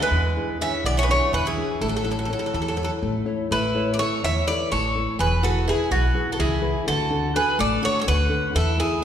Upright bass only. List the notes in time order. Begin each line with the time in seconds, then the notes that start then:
0.11 E2
0.84 B1
1.33 E2
1.81 A1
2.54 E2
3.03 A1
3.51 A1
4.23 E2
4.72 A1
5.19 E1
5.91 B1
6.39 C#2
6.87 D2
7.60 A1
8.08 D2
8.55 E2